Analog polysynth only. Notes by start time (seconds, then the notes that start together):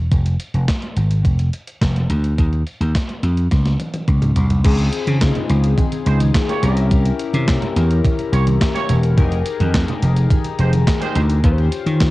4.64 C4 D#4 F4 G#4
6.62 C#4 D#4 G4 A#4
6.69 E4
9.17 D#4 G4 G#4 A#4
11.43 C#4 F4 G4 B4
11.52 C5